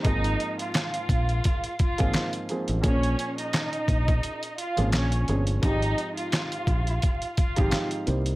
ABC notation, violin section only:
X:1
M:4/4
L:1/16
Q:"Swing 16ths" 1/4=86
K:Ab
V:1 name="Violin section"
[Ee]3 [Ff]6- [Ff] [Ff]3 z3 | [Dd]3 [Ee]6- [Ee] [Ff]2 [Dd]2 z2 | [Ee]3 [Ff]6- [Ff] [Ff]3 z3 |]